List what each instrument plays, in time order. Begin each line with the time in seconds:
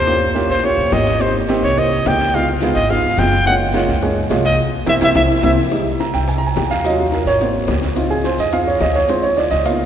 Already playing: upright bass D#2, trumpet C5
0.07 grand piano A#3 C#4 F4 G4, high bongo, long guiro
0.35 grand piano A#3 C#4 F4 G4, high bongo, short guiro
0.49 upright bass A#1, trumpet C5, high bongo, short guiro
0.63 grand piano A#3 C#4 F4 G4, trumpet C#5, high bongo, long guiro
0.78 upright bass A#1, high bongo
0.92 upright bass G#1, grand piano A#3 C#4 F4 G4, trumpet D#5, high bongo, low bongo, short guiro
1.06 high bongo, short guiro
1.20 grand piano A#3 C4 D#4 G4, trumpet C5, high bongo, long guiro, maracas
1.35 maracas
1.48 grand piano A#3 C4 D#4 G4, high bongo, short guiro, maracas
1.62 upright bass C2, trumpet C#5, short guiro, maracas
1.77 grand piano A#3 C4 D#4 G4, trumpet D#5, high bongo, long guiro, maracas
1.91 maracas
2.05 upright bass C#2, grand piano A#3 C4 D#4 G4, trumpet G5, high bongo, low bongo, short guiro, maracas
2.19 short guiro, maracas
2.33 grand piano G#3 B3 D#4 F4, trumpet F5, high bongo, long guiro, maracas
2.47 maracas
2.61 grand piano G#3 B3 D#4 F4, high bongo, short guiro, maracas
2.75 upright bass G#1, trumpet D#5, high bongo, short guiro, maracas
2.89 grand piano G#3 B3 D#4 F4, trumpet F5, high bongo, long guiro, maracas
3.04 upright bass G1, high bongo, maracas
3.18 upright bass F#1, grand piano G#3 B3 D#4 F4, trumpet G5, high bongo, low bongo, short guiro, maracas
3.32 high bongo, short guiro, maracas
3.45 grand piano G#3 A#3 C#4 F4, trumpet F#5, high bongo, long guiro, maracas
3.59 maracas
3.73 grand piano G#3 A#3 C#4 F4, high bongo, short guiro, maracas
3.87 upright bass C#2, short guiro, maracas
4.01 grand piano G#3 A#3 C#4 G#4, high bongo, long guiro, maracas
4.15 maracas
4.30 upright bass C2, grand piano G#3 A#3 C#4 F4, high bongo, low bongo, short guiro, maracas
4.44 trumpet D#5, short guiro, maracas
4.86 upright bass C2, grand piano A#3 C4 E4, trumpet E5, low bongo, long guiro, maracas
5.00 upright bass C2, grand piano A#3 C4 E4, trumpet E5, low bongo, long guiro, maracas
5.14 upright bass C2, grand piano A#3 C4 E4, trumpet E5, low bongo, long guiro, maracas
5.43 upright bass C2, grand piano A#3 C4 E4, trumpet E5, low bongo, long guiro, maracas
5.71 grand piano G3 G#3 D#4, high bongo, long guiro, maracas
5.85 maracas
6.00 grand piano A#5, high bongo, short guiro, maracas
6.14 upright bass C2, grand piano G5, short guiro, maracas
6.28 grand piano G#5, high bongo, long guiro, maracas
6.38 grand piano A#5
6.43 grand piano G#5, maracas
6.56 upright bass D#2, grand piano G5, high bongo, low bongo, short guiro, maracas
6.71 grand piano F5, short guiro, maracas
6.84 grand piano F#3 C#4 F4 D#5, high bongo, long guiro, maracas
6.98 grand piano F#4, high bongo, maracas
7.12 grand piano A#4, high bongo, short guiro, maracas
7.25 upright bass G#1, grand piano C#5, high bongo, short guiro, maracas
7.40 grand piano A#3 C4 F#4 C5, high bongo, long guiro, maracas
7.54 high bongo, maracas
7.67 upright bass C#2, high bongo, low bongo, short guiro, maracas
7.82 short guiro, maracas
7.95 grand piano C4 D#4 F4, high bongo, long guiro, maracas
8.10 grand piano G#4, maracas
8.24 grand piano C5, high bongo, short guiro, maracas
8.38 upright bass F2, grand piano D#5, short guiro, maracas
8.52 grand piano C4 D#4 F4 F5, high bongo, long guiro, maracas
8.66 grand piano C#5, maracas
8.80 upright bass D2, grand piano D#5, high bongo, low bongo, short guiro, maracas
8.94 grand piano C#5, short guiro, maracas
9.08 grand piano G#3 C4 F4 C5, high bongo, long guiro, maracas
9.22 grand piano C#5, high bongo, maracas
9.36 grand piano D5, high bongo, short guiro, maracas
9.51 upright bass C#2, grand piano D#5, high bongo, short guiro, maracas
9.65 grand piano A#3 B3 D#4 F4 F5, high bongo, long guiro, maracas
9.79 high bongo, maracas